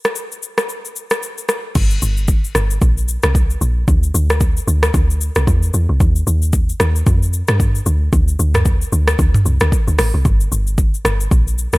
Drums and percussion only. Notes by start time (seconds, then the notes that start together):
0.05 cross-stick, shaker
0.15 shaker
0.32 shaker
0.43 shaker
0.58 cross-stick, shaker
0.69 shaker
0.85 shaker
0.96 shaker
1.10 cross-stick, shaker
1.23 shaker
1.38 shaker
1.49 cross-stick, shaker
1.75 kick, crash, shaker
1.90 shaker
2.02 shaker
2.17 shaker
2.28 kick, shaker
2.44 shaker
2.55 cross-stick, shaker
2.71 shaker
2.81 kick, shaker
2.98 shaker
3.08 shaker
3.23 cross-stick, shaker
3.35 kick, shaker
3.50 shaker
3.61 shaker
3.88 kick, shaker
4.03 shaker
4.15 shaker
4.30 cross-stick, shaker
4.41 kick, shaker
4.57 shaker
4.68 shaker
4.83 cross-stick, shaker
4.94 kick, shaker
5.10 shaker
5.21 shaker
5.35 cross-stick, shaker
5.47 kick, shaker
5.63 shaker
5.74 shaker
6.00 kick, shaker
6.16 shaker
6.27 shaker
6.42 shaker
6.53 kick, shaker
6.69 shaker
6.80 cross-stick, shaker
6.96 shaker
7.07 kick, shaker
7.23 shaker
7.33 shaker
7.48 cross-stick, shaker
7.60 kick, shaker
7.75 shaker
7.86 shaker
8.13 kick, shaker
8.28 shaker
8.40 shaker
8.54 cross-stick, mid tom, shaker
8.65 kick, shaker
8.82 shaker
8.93 shaker
9.08 cross-stick, shaker
9.19 kick, shaker
9.34 mid tom, shaker
9.46 shaker
9.60 cross-stick, shaker
9.72 kick, shaker
9.88 shaker
9.99 cross-stick, open hi-hat, shaker
10.25 kick, shaker
10.40 shaker
10.52 shaker
10.67 shaker
10.78 kick, shaker
10.94 shaker
11.05 cross-stick, shaker
11.20 shaker
11.31 kick, shaker
11.48 shaker
11.58 shaker
11.73 cross-stick, shaker